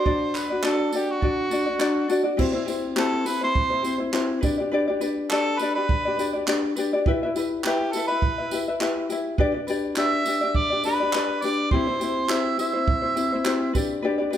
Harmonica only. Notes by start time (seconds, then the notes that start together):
Already playing: C5
0.36 B4
0.66 A4
0.96 G4
1.11 F#4
2.99 A4
3.27 B4
3.44 C5
5.30 A4
5.58 B4
5.74 B4
7.64 G4
7.92 A4
8.07 B4
9.98 E5
10.57 D5
10.85 B4
11.42 D5
11.71 C5
12.30 E5
12.60 E5